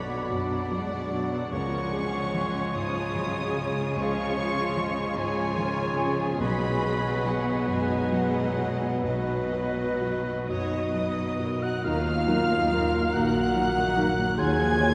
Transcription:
0.00 1.48 B1 medium
0.00 1.49 B2 medium
0.00 0.29 D3 medium
0.00 0.55 F#3 soft
0.00 1.49 F#3 medium
0.00 1.49 D4 medium
0.00 1.36 F#4 medium
0.00 0.16 B4 soft
0.00 0.31 C#5 medium
0.00 1.48 D5 medium
0.00 0.32 F#5 medium
0.00 2.71 F#5 medium
0.00 0.68 B5 medium
0.30 0.95 F#2 soft
0.30 0.71 F#3 medium
0.30 1.50 D4 medium
0.30 1.53 D5 medium
0.71 1.36 F#3 soft
0.71 1.12 G#3 medium
1.11 1.53 F#3 medium
1.11 1.52 D4 soft
1.52 3.92 C#2 medium
1.52 6.36 C#3 medium
1.52 2.73 F3 medium
1.52 6.36 G#3 medium
1.52 6.36 C#4 medium
1.52 2.75 C#4 medium
1.52 3.92 F4 medium
1.52 1.92 A#4 medium
1.52 3.92 C#5 medium
1.52 2.71 C#6 loud
1.93 2.59 G#4 medium
1.93 2.32 G#4 medium
2.34 2.99 F3 soft
2.34 2.74 G#4 medium
2.74 3.40 G#2 soft
2.74 3.15 F3 medium
2.74 3.94 F4 medium
2.74 5.15 G#4 medium
2.74 3.97 C#5 medium
2.74 3.96 D#6 loud
3.15 3.80 F3 soft
3.15 3.56 F#3 medium
3.56 3.96 G#3 medium
3.56 4.21 C#4 soft
3.95 6.36 C#2 medium
3.95 5.14 F3 medium
3.95 5.14 F4 medium
3.95 5.15 F4 medium
3.95 5.15 C#5 medium
3.95 4.36 F5 medium
3.95 5.17 C#6 loud
4.37 4.76 F5 medium
4.77 5.41 F3 soft
4.77 6.40 C#5 medium
5.16 5.82 G#2 soft
5.16 5.57 F3 medium
5.16 6.38 F4 medium
5.16 7.64 G#4 medium
5.16 9.01 G#4 medium
5.16 6.24 C#5 medium
5.16 6.40 G#5 loud
5.57 5.99 D#3 medium
5.57 6.23 F3 medium
5.98 6.40 F3 medium
5.98 6.40 C#4 medium
6.39 9.00 B1 medium
6.39 11.59 B2 medium
6.39 10.32 F#3 medium
6.39 7.65 F#3 medium
6.39 10.32 B3 medium
6.39 8.69 F#4 medium
6.39 8.70 B4 medium
6.39 7.66 D#5 medium
6.39 7.24 B5 loud
6.82 7.51 B4 medium
7.25 7.95 F#3 soft
7.25 7.69 F#5 medium
7.68 8.40 F#2 soft
7.68 9.05 G#3 medium
7.68 9.05 D#4 medium
7.68 9.02 D#5 medium
7.68 8.13 G#5 medium
8.12 8.85 F#3 soft
8.12 9.05 F#5 medium
8.58 9.33 F#4 soft
9.04 11.80 B1 medium
9.04 11.60 F#3 medium
9.04 11.60 F#4 medium
9.04 11.47 F#4 medium
9.04 10.45 B4 medium
9.04 10.38 B4 medium
9.04 10.47 D#5 medium
9.04 10.38 D#5 medium
9.53 10.31 B4 soft
10.01 10.77 F#3 soft
10.49 11.21 F#2 soft
10.49 11.58 D#4 medium
10.49 10.91 C#5 medium
10.49 11.58 D#5 medium
10.49 11.64 D#5 medium
10.49 11.58 D#6 medium
10.94 11.67 F#3 soft
10.94 11.40 B4 medium
11.39 11.84 F#4 soft
11.39 11.85 A#4 medium
11.62 11.85 F#4 medium
11.62 11.84 F#5 medium
11.62 11.85 F#6 medium
11.84 12.92 D#2 medium
11.84 12.26 D#2 medium
11.84 12.93 D#2 medium
11.84 12.26 D#3 medium
11.84 12.05 D#3 medium
11.84 12.02 D#4 medium
11.84 13.11 F4 medium
11.84 14.34 A#4 medium
11.84 11.95 A#4 medium
11.84 13.15 F5 medium
11.84 13.11 F5 medium
11.84 13.12 F6 loud
12.07 12.28 F#3 medium
12.28 12.67 F#3 medium
12.28 12.50 A#3 medium
12.28 12.67 D#4 medium
12.28 12.45 D#4 medium
12.28 12.67 A#4 medium
12.28 12.38 A#4 medium
12.50 12.71 D#4 medium
12.71 13.10 F#3 soft
12.71 12.93 A#3 medium
12.71 13.10 D#4 soft
12.71 12.88 D#4 medium
12.71 12.81 A#4 medium
12.71 13.10 A#4 medium
12.92 13.14 F#3 medium
13.13 14.17 A#1 medium
13.13 13.54 D#2 medium
13.13 14.17 A#2 medium
13.13 13.54 D#3 medium
13.13 13.35 D#3 medium
13.13 13.31 D#4 medium
13.13 14.38 F#4 medium
13.13 13.24 A#4 medium
13.13 14.40 F#5 medium
13.13 14.38 F#5 medium
13.13 14.38 F#6 medium
13.35 13.55 F#3 medium
13.55 13.92 F#3 soft
13.55 13.76 A#3 medium
13.55 13.92 D#4 soft
13.55 13.72 D#4 medium
13.55 13.65 A#4 medium
13.55 13.93 A#4 soft
13.76 13.97 D#4 medium
13.96 14.34 F#3 soft
13.96 14.17 A#3 medium
13.96 14.12 D#4 medium
13.96 14.34 D#4 soft
13.96 14.34 A#4 medium
13.96 14.06 A#4 medium
14.17 14.38 F#3 medium
14.38 14.78 D#2 medium
14.38 14.94 D#2 medium
14.38 14.78 D#3 medium
14.38 14.58 D#3 medium
14.38 14.54 F4 medium
14.38 14.94 F4 medium
14.38 14.94 G#4 medium
14.38 14.47 C#5 medium
14.38 14.94 G#5 medium
14.38 14.94 G#6 loud
14.60 14.80 F3 medium
14.79 14.94 F3 medium
14.79 14.94 G#3 medium
14.79 14.94 D#4 medium
14.79 14.94 F4 medium
14.79 14.89 C#5 medium
14.79 14.94 C#5 medium

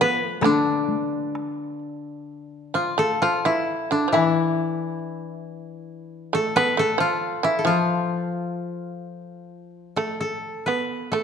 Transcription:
0.00 1.35 F3 medium
0.00 0.27 B3 medium
0.00 0.87 F4 medium
0.00 1.03 A4 medium
0.00 1.79 B4 medium
0.27 0.41 A3 medium
0.41 3.21 D3 soft
0.41 1.79 D3 soft
0.41 2.88 D4 medium
0.41 taiko rim medium
0.41 taiko high medium
0.88 taiko high soft
1.35 taiko rim soft
2.74 2.96 F3 soft
2.74 3.21 F4 medium
2.98 3.20 A3 medium
2.98 4.89 A4 medium
3.22 3.44 F3 medium
3.22 3.52 F4 medium
3.45 3.88 E3 medium
3.45 4.12 E4 medium
3.91 4.06 D3 soft
3.91 6.34 D4 medium
4.08 4.14 F3 soft
4.12 6.77 E3 soft
4.12 4.98 E3 soft
4.12 6.39 E4 medium
6.33 6.54 A3 medium
6.33 6.79 A4 medium
6.56 6.77 B3 medium
6.56 8.33 B4 medium
6.77 6.98 A3 medium
6.77 7.58 A4 medium
6.98 7.40 F3 medium
6.98 7.50 F4 medium
7.43 7.64 E3 medium
7.43 7.73 E4 medium
7.59 9.49 A4 soft
7.65 10.43 F3 soft
7.65 8.52 F3 soft
7.65 9.85 F4 medium
9.96 10.63 A3 soft
9.96 10.20 A4 soft
10.21 11.11 A4 medium
10.66 11.10 B3 soft
10.66 11.23 B4 medium
11.12 11.23 A3 soft
11.12 11.23 A4 medium

